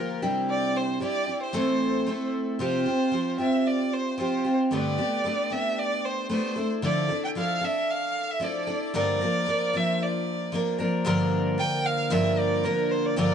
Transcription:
Already playing: twelve-string acoustic guitar F3 A#3 F4 G4, violin A#4
0.22 twelve-string acoustic guitar C3 G3 D4 E4 G4
0.50 violin D5
0.77 violin C5
1.00 twelve-string acoustic guitar G3 D4 E4 G4, violin D5
1.26 twelve-string acoustic guitar D4 E4 G4
1.42 violin C5
1.53 twelve-string acoustic guitar A2 E3 A3 C4 E4 A4
2.06 twelve-string acoustic guitar A3 C4 E4 A4
2.59 twelve-string acoustic guitar C3 F3 C4 F4 G4, violin C5
2.86 twelve-string acoustic guitar C4 F4 G4
3.11 twelve-string acoustic guitar F3 C4 F4 G4
3.38 twelve-string acoustic guitar C4 F4 G4, violin E5
3.67 violin D5
3.93 violin C5
4.18 twelve-string acoustic guitar F3 C4 F4 G4, violin C5
4.45 twelve-string acoustic guitar C4 F4 G4
4.71 twelve-string acoustic guitar G2 D3 A3 B3 D4 G4, violin D5
4.98 twelve-string acoustic guitar A3 B3 D4 G4
5.24 twelve-string acoustic guitar A3 B3 D4 G4
5.50 twelve-string acoustic guitar A3 B3 D4 G4, violin E5
5.78 violin D5
6.05 violin C5
6.29 twelve-string acoustic guitar A3 B3 D4 G4, violin C5
6.56 twelve-string acoustic guitar D4 E4 A4
6.82 twelve-string acoustic guitar D3 F3 D4 E4 A4, violin D5
7.09 twelve-string acoustic guitar D4 E4 A4
7.24 violin G5
7.35 twelve-string acoustic guitar F3 D4 E4 A4, violin F5
7.61 twelve-string acoustic guitar D4 A4, violin E5
7.90 violin F5
8.30 violin E5
8.40 twelve-string acoustic guitar F3 D4 E4 A4, violin D5
8.67 twelve-string acoustic guitar D4 E4 A4
8.94 twelve-string acoustic guitar G2 D3 F3 A#3 D4 A#4, violin D5
9.21 twelve-string acoustic guitar F3 A#3 D4 A#4
9.46 twelve-string acoustic guitar F3 A#3 D4 A#4
9.73 twelve-string acoustic guitar F3 A#3 D4 A#4, violin E5
10.02 violin D5
10.52 twelve-string acoustic guitar F3 A#3 D4 A#4
10.79 twelve-string acoustic guitar F3 A#3 D4 A#4
11.05 twelve-string acoustic guitar G2 D3 F3 A#3 D4 A#4
11.58 twelve-string acoustic guitar F3 A#3 D4 A#4, violin G5
11.86 violin F5
12.10 twelve-string acoustic guitar G2 D3 F3 A#3 D4 A#4, violin E5
12.39 violin D5
12.63 twelve-string acoustic guitar F3 A#3 D4 A#4, violin A#4
12.91 violin C5
13.06 violin D5
13.16 twelve-string acoustic guitar G2 D3 F3 A#3 D4 A#4, violin D5

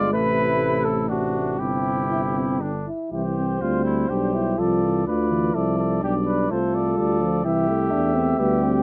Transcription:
Already playing: tuba G1, french horn G#3, cornet D5
0.13 tuba A1, trombone C3, french horn A3, trumpet E4, cornet B4
0.84 cornet A4
1.09 trombone C3, french horn A3, trumpet D4, cornet F#4
1.59 tuba G1, trombone C3, french horn C4, trumpet E4, cornet G4
2.10 french horn E4
2.35 french horn C4
2.61 trombone D3, french horn D4, trumpet D4
2.87 french horn E4
3.12 tuba C2, trombone E3, french horn E4, trumpet G4, cornet C5
3.37 french horn C4
3.61 tuba D2, trombone G3, french horn C4, trumpet F4
3.85 trumpet E4
4.09 tuba B1, trombone G3, french horn D4, trumpet G4
4.34 french horn E4
4.58 tuba C2, trombone F3, french horn F4, trumpet A4, cornet D5
4.83 trombone E3
5.07 tuba D2, trombone D3, french horn F4, trumpet B4, cornet D5
5.31 trombone E3
5.54 tuba C2, trombone F3, french horn E4, trumpet A4, cornet D5
5.79 trumpet A4
6.02 tuba B1, trombone G3, french horn D4, trumpet G4, cornet D5
6.27 trumpet B4
6.51 tuba C2, trombone A3, french horn F4, trumpet A4, cornet C5
6.75 cornet D5
6.98 tuba D2, trombone G3, cornet D5
7.21 trombone F3
7.44 tuba C2, trombone E3, french horn E4, trumpet G4, cornet E5
7.68 trombone A3
7.91 tuba E2, french horn D4
8.15 french horn C4
8.39 tuba D2, trombone G3, french horn B3, trumpet G4
8.63 french horn C4

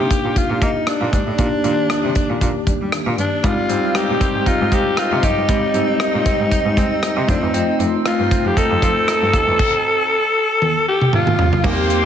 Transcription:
Already playing: tine electric piano A#3 D4 D#4 G4, alto saxophone G4
0.10 kick, closed hi-hat
0.25 cello A#2
0.36 alto saxophone F4, kick, closed hi-hat
0.50 cello A#2
0.61 cello A#3, alto saxophone D#4, kick, closed hi-hat
0.87 alto saxophone D4, cross-stick, closed hi-hat
1.01 cello A#2
1.13 cello G#2, alto saxophone D4, kick, closed hi-hat
1.27 cello A2
1.38 cello A#2, tine electric piano A#3 D4 D#4 G4, kick, closed hi-hat
1.64 cello A#2, tine electric piano D#3 A#3 D4 G4, closed hi-hat
1.90 cross-stick, closed hi-hat
2.04 cello C3
2.15 kick, closed hi-hat
2.30 cello A#2
2.41 cello A#2, kick, closed hi-hat
2.67 cello G3, kick, closed hi-hat
2.81 cello G3
2.92 cross-stick, closed hi-hat
3.07 cello A#2
3.18 cello G2, alto saxophone D4, closed hi-hat
3.43 cello G#2, clean electric guitar G3, tine electric piano G#3 C4 D#4 G4, alto saxophone F4, kick, closed hi-hat
3.69 cello G#2, tine electric piano G3 C4 D#4 G4, clean electric guitar C4, closed hi-hat
3.95 clean electric guitar D#4, alto saxophone G4, cross-stick, closed hi-hat
4.09 cello A#2
4.21 clean electric guitar C4, kick, closed hi-hat
4.35 cello G#2
4.46 clean electric guitar D#4, alto saxophone F4, kick, closed hi-hat
4.61 cello G#2
4.72 cello G#3, clean electric guitar C4, alto saxophone G4, kick, closed hi-hat
4.97 clean electric guitar D#4, alto saxophone F4, cross-stick, closed hi-hat
5.12 cello C3
5.23 cello F#2, alto saxophone D#4, clean electric guitar G4, kick, closed hi-hat
5.38 cello G2
5.48 cello G#2, clean electric guitar G3, tine electric piano G#3 C4 D#4 G4, kick, closed hi-hat
5.74 cello G#2, tine electric piano G3 C4 D#4 G4, clean electric guitar C4, closed hi-hat
6.00 clean electric guitar D#4, cross-stick, closed hi-hat
6.14 cello A#2
6.26 clean electric guitar C4, kick, closed hi-hat
6.40 cello G#2
6.51 clean electric guitar D#4, kick, closed hi-hat
6.65 cello G#2
6.77 cello G#3, clean electric guitar C4, kick, closed hi-hat
7.02 clean electric guitar D#4, cross-stick, closed hi-hat
7.17 cello C3
7.28 cello F2, tine electric piano A3 C4 D#4 F4, clean electric guitar C4, alto saxophone D#4, kick, closed hi-hat
7.42 cello E2
7.54 cello F2, clean electric guitar C4, closed hi-hat
7.79 cello F2, tine electric piano A3 C4 D#4 F4, clean electric guitar C4, closed hi-hat
8.05 clean electric guitar D#4, alto saxophone F4, cross-stick, closed hi-hat
8.19 cello G2
8.31 clean electric guitar C4, kick, closed hi-hat
8.45 cello F2, alto saxophone G4
8.57 clean electric guitar D#4, alto saxophone A4, kick, closed hi-hat
8.71 cello F2
8.82 cello F3, clean electric guitar C4, kick, closed hi-hat
9.08 clean electric guitar D#4, cross-stick, closed hi-hat
9.22 cello G2
9.33 cello D#2, clean electric guitar A4, kick, closed hi-hat
9.47 cello E2
9.59 kick, crash
10.62 high tom
10.88 alto saxophone G4
11.01 mid tom
11.13 alto saxophone F4, mid tom
11.27 mid tom
11.39 floor tom
11.53 floor tom
11.64 cello C2, tine electric piano A#3 C4 D#4 G4, clean electric guitar A#3, analog synth pad A#3 C5 G5 C6, alto saxophone G4, kick, crash
11.90 clean electric guitar A#3, closed hi-hat

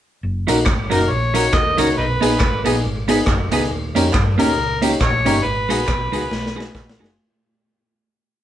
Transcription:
0.23 fingered electric bass F#1
0.47 fingered electric bass A#1, clean electric guitar F#3 C#4 D#4 A#4, honky-tonk piano A#3 D#4 F#4, closed hi-hat
0.66 fingered electric bass G#1, kick, cross-stick, clap
0.90 fingered electric bass F#1, clean electric guitar F#3 C#4 D#4 A#4, honky-tonk piano A#3 D#4 F#4, harmonica D#4 A#4, closed hi-hat
1.10 fingered electric bass A#1, harmonica C#5
1.34 clean electric guitar F#3 C#4 D#4 A#4, honky-tonk piano A#3 D#4 F#4, closed hi-hat
1.53 fingered electric bass D#2, honky-tonk piano D#4 F#4, harmonica D#5, kick, cross-stick, clap
1.77 fingered electric bass C#2, clean electric guitar F#3 C#4 D#4 A#4, honky-tonk piano A#3 D#4 F#4, harmonica C#5, closed hi-hat
1.97 fingered electric bass B1, harmonica D#4 B4
2.21 fingered electric bass A#1, honky-tonk piano B3 D#4 G#4, clean electric guitar B3 D#4 G#4 B4, closed hi-hat
2.40 fingered electric bass G#1, kick, cross-stick, clap
2.65 fingered electric bass A#1, honky-tonk piano B3 D#4 G#4, clean electric guitar B3 D#4 G#4 B4, closed hi-hat
2.84 fingered electric bass G#1
3.08 honky-tonk piano B3 D#4 G#4, clean electric guitar B3 D#4 G#4 B4, closed hi-hat
3.26 fingered electric bass F#1, honky-tonk piano D#4 G#4, kick, cross-stick, clap
3.51 fingered electric bass C#2, clean electric guitar B3 D#4 G#4 B4, honky-tonk piano B3 D#4 G#4, closed hi-hat
3.71 fingered electric bass D#2
3.95 fingered electric bass F2, clean electric guitar A#3 C#4 G4 A#4, honky-tonk piano C#4 D#4 G4, closed hi-hat
4.13 fingered electric bass G2, kick, cross-stick, clap
4.38 fingered electric bass D#2, clean electric guitar A#3 C#4 G4 A#4, honky-tonk piano C#4 D#4 G4, harmonica A#4, closed hi-hat
4.58 fingered electric bass C#2
4.82 clean electric guitar A#3 C#4 G4 A#4, honky-tonk piano C#4 D#4 G4, closed hi-hat
5.01 fingered electric bass A#1, honky-tonk piano D#4 G4, harmonica C#5, kick, cross-stick, clap
5.25 fingered electric bass G1, clean electric guitar A#3 C#4 G4 A#4, honky-tonk piano C#4 D#4 G4, closed hi-hat
5.44 fingered electric bass G#1, harmonica B4
5.69 fingered electric bass A#1, clean electric guitar G#3 D#4 F#4 B4, honky-tonk piano B3 F#4 G#4, closed hi-hat
5.87 fingered electric bass B1, kick, cross-stick, clap
6.12 fingered electric bass C#2, clean electric guitar G#3 D#4 F#4 B4, honky-tonk piano B3 F#4 G#4, closed hi-hat
6.31 fingered electric bass B1, snare
6.46 snare
6.55 clean electric guitar G#3 D#4 F#4 B4, honky-tonk piano B3 F#4 G#4
6.60 snare
6.75 fingered electric bass A#1, honky-tonk piano F#4 G#4, kick, snare, clap
6.89 snare
6.99 fingered electric bass F#1, clean electric guitar G#3 D#4 F#4 B4, honky-tonk piano B3 F#4 G#4
7.04 snare

